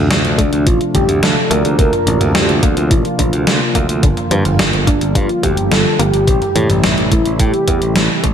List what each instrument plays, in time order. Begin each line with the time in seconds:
Already playing: analog synth pad C3 F3 A3 D4 F4
0.10 picked electric bass D2, synth arpeggio sound F3, snare, closed hi-hat
0.24 picked electric bass D2, closed hi-hat
0.38 picked electric bass D2, synth arpeggio sound A3, analog synth lead D4, kick, closed hi-hat
0.53 picked electric bass D2, closed hi-hat
0.66 picked electric bass A1, synth arpeggio sound C3, analog synth lead F4, kick, closed hi-hat
0.81 closed hi-hat
0.94 picked electric bass A1, synth arpeggio sound D3, analog synth lead G4, kick, closed hi-hat, mid tom
1.09 picked electric bass D2, closed hi-hat
1.23 picked electric bass D2, synth arpeggio sound F3, analog synth lead A4, snare, closed hi-hat
1.50 picked electric bass D2, synth arpeggio sound A3, analog synth lead A#4, closed hi-hat
1.65 picked electric bass D2, closed hi-hat
1.78 picked electric bass D2, synth arpeggio sound C3, analog synth pad A#3, kick, closed hi-hat
1.93 closed hi-hat, mid tom
2.07 picked electric bass A1, synth arpeggio sound D3, closed hi-hat
2.21 picked electric bass D2, closed hi-hat, mid tom
2.34 picked electric bass D2, synth arpeggio sound F3, analog synth lead G4, snare, closed hi-hat
2.49 picked electric bass D2, closed hi-hat
2.62 picked electric bass D2, synth arpeggio sound A#3, analog synth lead F4, kick, closed hi-hat
2.77 picked electric bass D2, closed hi-hat
2.90 picked electric bass A1, synth arpeggio sound C3, analog synth lead F4, kick, closed hi-hat
3.05 closed hi-hat
3.19 picked electric bass A1, synth arpeggio sound D3, kick, closed hi-hat
3.33 picked electric bass D2, closed hi-hat
3.47 picked electric bass D2, synth arpeggio sound F3, snare, closed hi-hat
3.75 picked electric bass D2, synth arpeggio sound A#3, kick, closed hi-hat
3.89 picked electric bass D2, closed hi-hat
4.03 picked electric bass G1, analog synth pad D3 G3, synth arpeggio sound D3, kick, closed hi-hat
4.17 closed hi-hat, mid tom
4.31 picked electric bass G2, synth arpeggio sound F3, closed hi-hat
4.45 picked electric bass G1, closed hi-hat, mid tom
4.59 picked electric bass G1, synth arpeggio sound G3, snare, closed hi-hat
4.73 picked electric bass G1, closed hi-hat
4.87 picked electric bass G1, synth arpeggio sound A#3, analog synth lead D4, kick, closed hi-hat
5.01 picked electric bass G1, closed hi-hat
5.15 picked electric bass G2, synth arpeggio sound D3, analog synth lead F4, kick, closed hi-hat
5.29 closed hi-hat
5.43 picked electric bass D2, synth arpeggio sound F3, analog synth lead G4, kick, closed hi-hat, mid tom
5.57 picked electric bass G1, closed hi-hat
5.71 picked electric bass G1, synth arpeggio sound G3, analog synth lead A4, snare, closed hi-hat
5.99 picked electric bass G1, synth arpeggio sound A#3, analog synth lead G4, closed hi-hat
6.14 picked electric bass G1, closed hi-hat
6.27 picked electric bass A1, synth arpeggio sound C3, analog synth pad C3 E3 A3 E4, kick, closed hi-hat
6.42 closed hi-hat, mid tom
6.55 picked electric bass A2, synth arpeggio sound E3, closed hi-hat
6.70 picked electric bass A1, closed hi-hat, mid tom
6.84 picked electric bass A1, synth arpeggio sound G3, analog synth lead E4, snare, closed hi-hat
6.98 picked electric bass A1, closed hi-hat
7.12 picked electric bass A1, synth arpeggio sound A3, analog synth lead E4, kick, closed hi-hat
7.25 picked electric bass A1, closed hi-hat
7.39 picked electric bass A2, synth arpeggio sound C3, analog synth lead G4, kick, closed hi-hat
7.54 closed hi-hat
7.68 picked electric bass E2, synth arpeggio sound E3, kick, closed hi-hat
7.82 picked electric bass A1, closed hi-hat
7.96 picked electric bass A1, synth arpeggio sound G3, snare, closed hi-hat
8.23 picked electric bass A1, synth arpeggio sound A3, kick, closed hi-hat